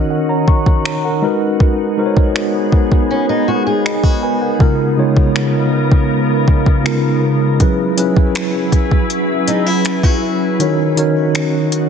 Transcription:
Already playing: D#3 C#4 D#4 F#4 A#4 C#5 D#5
0.10 A#4 F#5
0.29 C#5 A#5
0.48 C#6, kick
0.66 kick
0.85 C#5 A#5, finger snap
1.05 A#4 F#5
1.22 G#3 B3 D#4 F#4 G#4 A#4 B4
1.60 kick
1.97 G#3 D#4 F#4 A#4 C5
2.06 C#5
2.17 kick
2.36 finger snap
2.72 kick
2.92 kick
3.11 C#4
3.29 D#4
3.48 F#4
3.67 G#4
3.85 D#5 B5, finger snap
4.04 F#4, kick
4.23 B4 G#5
4.42 A#4 F#5
4.59 C#3 G#3 B3 D#4 F4 A#4, kick
4.97 C#3 G#3 B3 D#4 F4 C#5
5.17 kick
5.36 finger snap
5.92 kick
6.48 kick
6.66 kick
6.84 C#3 G#3 B3 D#4 F4 A#4, finger snap
7.59 F#3 C#4 E4 G#4 B4, kick, closed hi-hat
7.97 F#3 C#4 E4 G#4 B4, closed hi-hat
8.17 kick
8.35 finger snap, closed hi-hat
8.72 kick, closed hi-hat
8.91 kick
9.10 closed hi-hat
9.48 D#4, closed hi-hat
9.66 E4
9.85 finger snap, closed hi-hat
10.03 F#4, kick
10.59 D#3 D#4 F#4 A#4 C#5, closed hi-hat
10.96 D#3 D#4 F#4 A#4 C#5, closed hi-hat
11.35 finger snap, closed hi-hat
11.72 closed hi-hat

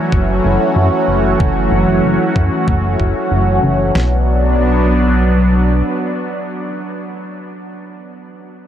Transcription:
Already playing: E3 F#3 A3 C#4 F#4
0.12 F#1, kick, closed hi-hat
0.44 F#1, closed hi-hat
0.60 closed hi-hat
0.76 F#2, closed hi-hat
1.08 F#1, closed hi-hat
1.24 closed hi-hat
1.40 F#1, kick
1.72 F#1, closed hi-hat
1.88 F#1
2.04 F#1
2.36 F#2, kick, closed hi-hat
2.52 closed hi-hat
2.68 F#1, kick, closed hi-hat
3.00 F#1, kick, closed hi-hat
3.31 F#1
3.63 F#1, closed hi-hat
3.95 B1 F#3 B3 D4, snare

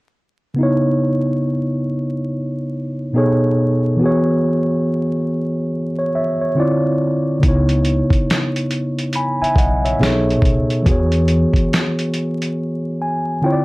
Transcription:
0.54 C#3 B3
0.58 D#4 E4
0.63 C#5
3.13 B2 B3 D#4 G#4 A4
3.18 C#5
3.97 E3 B3
4.01 F#4 G#4
4.06 C#5
5.99 C#5
6.15 C#5 E5
6.41 C#5
6.55 D3 C4 E4 F4
6.60 D5
7.39 C#3 B3, kick, closed hi-hat
7.43 C#2 D#4 E4
7.48 C#5
7.69 closed hi-hat
7.85 closed hi-hat
8.10 kick, closed hi-hat
8.30 snare, closed hi-hat
8.56 closed hi-hat
8.71 closed hi-hat
8.98 closed hi-hat
9.13 G#5 B5, closed hi-hat
9.41 E5 G#5, muted upright bass stroke, closed hi-hat
9.56 B1 D#5 F#5, kick, closed hi-hat
9.85 C#5 E5, closed hi-hat
9.99 B1 B2 B3 D#4 G#4 A4
10.03 C#5, snare, closed hi-hat
10.30 closed hi-hat
10.42 C#2, kick, closed hi-hat
10.70 closed hi-hat
10.82 E2 E3 B3, kick, closed hi-hat
10.87 F#4 G#4
10.91 C#5
11.12 closed hi-hat
11.28 closed hi-hat
11.54 kick, closed hi-hat
11.73 snare, closed hi-hat
11.99 closed hi-hat
12.14 closed hi-hat
12.42 closed hi-hat
13.02 G#5
13.42 D3 C4 E4 F4 G5
13.46 C#5
13.53 D5

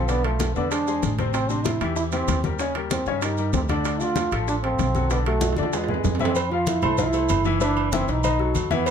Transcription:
Already playing: B1 C4
0.08 D3 B3 D4 D5, high bongo, high conga, high timbale, maracas
0.24 F3 A3 F4 A4, high bongo, high conga, high timbale
0.40 high bongo, high conga, high timbale, maracas
0.55 E2 D3 B3 D4 D5, high bongo, high conga, maracas
0.71 G#3 D4 G#4 C5, high bongo, high conga, high timbale, maracas
0.87 G#3 G#4 C5, high conga, maracas
1.03 A1, high bongo, low bongo, high conga, high timbale, maracas
1.18 C3 C4 C5, high bongo, high conga, high timbale, maracas
1.34 C4, high bongo, high timbale, maracas
1.49 C3 C4 D4 C5, high bongo, high conga, maracas
1.65 E4, high bongo, high conga, high timbale, maracas
1.81 E2 E3 E4 G4, high bongo, high conga, high timbale, maracas
1.96 E4, high bongo, high conga, maracas
2.12 E3 C4 E4 G4, high conga, high timbale, maracas
2.28 D#2, high bongo, low bongo, high conga, high timbale, maracas
2.44 G3 G4 A#4, high bongo, high conga, maracas
2.59 C#3 C#4 C#5, high bongo, high conga, high timbale, maracas
2.75 G3 G4 A#4, high bongo, high conga, high timbale
2.91 C4, high bongo, high conga, high timbale, maracas
3.06 G2 C#3 C#4 C#5, high bongo, high conga, maracas
3.22 G3 D#4 G4 A#4, high bongo, high conga, high timbale, maracas
3.37 G3 G4 A#4, high conga, maracas
3.53 D2 C4, high bongo, low bongo, high conga, high timbale, low timbale, maracas
3.69 D3 D4 D5, high bongo, high conga, high timbale, maracas
3.85 high bongo, high conga, high timbale, maracas
4.00 D3 D4 F4 D5, high bongo, high conga, maracas
4.16 high bongo, high conga, high timbale, maracas
4.31 A1 F3 F4 A4, high bongo, high conga, high timbale, maracas
4.48 D4, high bongo, high conga, maracas
4.64 F3 C4 F4 A4, high conga, high timbale
4.79 B1, high bongo, low bongo, high conga, high timbale, low timbale, maracas
4.95 F#3 F#4 A4, high bongo, high conga, maracas
5.10 D3 B3 D4 D5, high bongo, high conga, high timbale, maracas
5.26 F#3 A3 F#4 A4, high bongo, high conga, high timbale
5.41 high bongo, high conga, high timbale, maracas
5.52 high timbale
5.57 E2 D3 A3 D4 D5, high bongo, high conga, maracas
5.63 high timbale
5.73 G#3 G#4 B4, high bongo, high timbale, maracas
5.84 high timbale
5.88 G#3 G#4 B4, low conga
5.94 low timbale
6.04 F2, high bongo, low bongo, low conga, low timbale, maracas
6.15 low timbale
6.19 E3 C4 E4 E5, high bongo, low conga, maracas
6.25 low timbale
6.35 cowbell, high conga, low agogo, maracas
6.51 F3 F4 F5, high conga
6.67 E4, cowbell, high conga, low agogo, maracas
6.82 C2 A3 A4 C5, high conga, low conga, low agogo, maracas
6.98 F3 E4 F4 F5, cowbell, high conga, low conga, maracas
7.13 A3 A4 C5, high conga, low agogo, maracas
7.29 F#1, cowbell, high conga, low agogo, maracas
7.45 E3 E4 E5, maracas
7.61 E3 D4 E4 E5, cowbell, high conga, low agogo, maracas
7.77 high conga, low agogo
7.92 E3 C4 E4 E5, cowbell, high conga, maracas
8.08 B1 D#4, cowbell, high conga, maracas
8.24 D#3 D#4 D#5, cowbell, high conga, low agogo, maracas
8.39 F#3 F#4 A4, high conga
8.55 E2, cowbell, high conga, low agogo, maracas
8.71 E3 B3 E4 E5, cowbell, high conga, maracas
8.86 cowbell, high conga, low agogo, maracas

